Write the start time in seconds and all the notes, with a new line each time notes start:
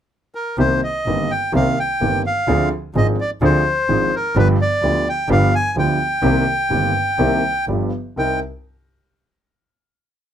0.35 A#4
0.58 C2 C3 D#3 A#3 C4 G4 C5
0.83 D#5
1.06 G1 G2 D#3 A#3 C4 G4
1.31 G5
1.52 C2 C3 D#3 A#3 C4 G4 F5
1.79 G5
2.01 G1 G2 D#3 A#3 C4 G4
2.27 F5
2.47 D2 D3 F3 C4 D4 G#4
2.95 G#1 G#2 F3 C4 D4 G#4 D#5
3.21 D5
3.41 D2 D3 F3 C4 D4 G#4 C5
3.89 G#1 G#2 F3 C4 D4 G#4
4.15 A#4
4.35 G1 G2 F3 B3 D4 G4 B4
4.61 D5
4.82 D2 D3 F3 B3 D4 G4
5.09 G5
5.29 G1 G2 F3 B3 D4 G4 F5
5.55 G#5
5.75 D2 D3 F3 B3 D4 G4 G5
6.22 C2 C3 D#3 A#3 C4 G4
6.70 G1 G2 D#3 A#3 C4 G4
7.18 C2 C3 D#3 A#3 C4 G4
7.68 G1 G2 F3 B3 D4 G4
8.16 C2 C4 D#4 A#4 G5